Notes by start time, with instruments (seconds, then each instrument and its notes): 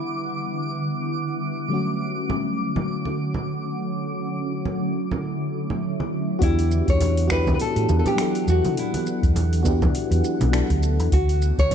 Already playing: ambient pad D3 G3 B3 E4 F#5, fm electric piano E3 G3 B3 D4 F#5, nylon-string guitar E4, synth texture D6
1.69 fm electric piano D3 F#3 A3, ambient pad F#3 A3 C#4 F#4
1.73 fm electric piano C#4 F#4
2.30 low conga
2.76 high conga, low conga
3.05 high conga
3.34 low conga
4.06 ambient pad E4
4.65 low conga
5.11 high conga, low conga
5.70 low conga
6.00 high conga
6.39 fingered electric bass E2, ambient pad E3 B3 D4 F#5, fm electric piano B3 D4 F#4, kick, open hi-hat, shaker
6.43 nylon-string guitar E4, fm electric piano E4 G4
6.59 open hi-hat, shaker
6.71 shaker
6.88 fingered electric bass E2, nylon-string guitar C#5, kick, open hi-hat, shaker
7.01 open hi-hat, low conga, shaker
7.17 open hi-hat, shaker
7.28 fm electric piano B3 D4 F#4, finger snap, kick, shaker
7.32 fm electric piano E4 G4, nylon-string guitar B4
7.47 kick, mid tom, low conga, shaker
7.54 nylon-string guitar B4
7.60 nylon-string guitar A4, open hi-hat, shaker
7.76 fingered electric bass A2, open hi-hat, shaker
7.89 fingered electric bass E2, high conga, shaker
7.99 nylon-string guitar A4
8.06 nylon-string guitar G4, open hi-hat, low conga, shaker
8.16 fm electric piano F#3 B3 D4, finger snap, open hi-hat, shaker
8.20 fm electric piano E4 A4
8.35 open hi-hat, shaker
8.47 fingered electric bass E2, nylon-string guitar F#4, shaker
8.65 mid tom, open hi-hat, high conga, shaker
8.77 nylon-string guitar E4, open hi-hat, shaker
8.94 open hi-hat, high conga, shaker
9.07 shaker
9.23 fingered electric bass E2, kick, open hi-hat, shaker
9.36 open hi-hat, low conga, shaker
9.53 open hi-hat, shaker
9.63 fm electric piano B3 D4 F#4, kick, high conga, shaker
9.67 fm electric piano E4 G4
9.82 kick, mid tom, low conga, shaker
9.95 open hi-hat, shaker
10.11 fingered electric bass E2, open hi-hat, shaker
10.24 shaker
10.40 fingered electric bass B1, open hi-hat, low conga, shaker
10.52 fm electric piano F#3 B3 D4 E4 A4, finger snap, open hi-hat, shaker
10.70 fingered electric bass D2, kick, open hi-hat, shaker
10.83 shaker
11.00 fingered electric bass E2, open hi-hat, shaker
11.12 fingered electric bass D2, ambient pad D3 F#3 A3 C#4, nylon-string guitar F#4, kick, open hi-hat, shaker
11.29 open hi-hat, shaker
11.42 shaker
11.58 fingered electric bass D2, nylon-string guitar C#5, kick, open hi-hat, shaker
11.71 open hi-hat, low conga, shaker